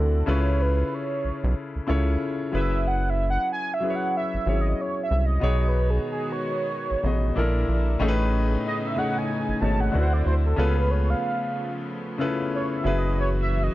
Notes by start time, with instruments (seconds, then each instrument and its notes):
Already playing: analog synth bass D2, grand piano D3 C4 E4 F#4 D5, soft synth lead A4
0.26 analog synth bass C#2, grand piano C#3 C#4 E4 F4 A4 B4, soft synth lead C#5
0.62 soft synth lead B4
0.94 soft synth lead C#5
1.25 analog synth bass B1
1.44 analog synth bass B1
1.76 analog synth bass C#2
1.87 analog synth bass C#2, grand piano C#3 C#4 E4 F4 A4 C#5
2.52 analog synth bass F#1, grand piano F#3 C#4 E4 G#4 B4, soft synth lead E5
2.87 soft synth lead F#5
3.10 soft synth lead E5
3.30 soft synth lead F#5
3.52 soft synth lead G#5
3.74 soft synth lead E5
3.80 grand piano F#3 C#4 E4 G#4 B4
3.90 grand piano C#5
3.95 soft synth lead F#5
4.17 soft synth lead E5
4.34 analog synth bass G#1
4.46 analog synth bass G#1, grand piano F#3 C#4 E4 G#4 C#5
4.61 soft synth lead D#5
4.81 soft synth lead C#5
5.03 soft synth lead E5
5.11 analog synth bass C2
5.26 soft synth lead D#5
5.40 analog synth bass B1, grand piano B2 B3 D#4 G#4 C#5, string section D#3 G#3 B3 F#4
5.68 soft synth lead B4
5.90 soft synth lead G#4
6.11 soft synth lead G#4
6.32 soft synth lead C#5
6.91 analog synth bass A1
7.03 analog synth bass A1, grand piano B2 B3 D#4 G#4 D#5
7.35 analog synth bass A#1, grand piano A#2 A#3 D4 E4 A4 A#4, string section C3 D3 A#3 E4
7.69 analog synth bass A#1
7.99 analog synth bass A1, grand piano A2 A3 C#4 D#4 G#4 A4, string section C#3 B3 D#4 G#4
8.08 grand piano B4
8.67 soft synth lead D#5
8.87 soft synth lead E5
8.96 grand piano A2 A3 C#4 D#4 G#4 C#5, soft synth lead F#5
9.18 soft synth lead G#5
9.49 analog synth bass G#1
9.61 analog synth bass G#1, grand piano B2 A3 C#4 D#4 G#4 C#5, soft synth lead A5
9.80 soft synth lead F#5
9.92 analog synth bass D2, grand piano D3 D4 E4 F#4 B4, string section D3 F#3 C4 E4
10.02 grand piano C5
10.13 soft synth lead D5
10.26 analog synth bass D2, soft synth lead C5
10.45 soft synth lead A4
10.56 analog synth bass C#2, grand piano C#3 B3 C#4 F4 A4 B4, string section C#3 F3 A3 B3
10.77 soft synth lead B4
10.91 soft synth lead C#5
11.10 soft synth lead F5
12.18 grand piano C#3 C#4 E4 F4 A4 B4
12.55 soft synth lead C#5
12.76 soft synth lead E5
12.84 analog synth bass F#1, string section E3 G#3 F#4, grand piano F#3 C#4 E4 G#4 B4
12.98 soft synth lead D#5
13.20 soft synth lead C#5
13.41 soft synth lead E5
13.63 soft synth lead D#5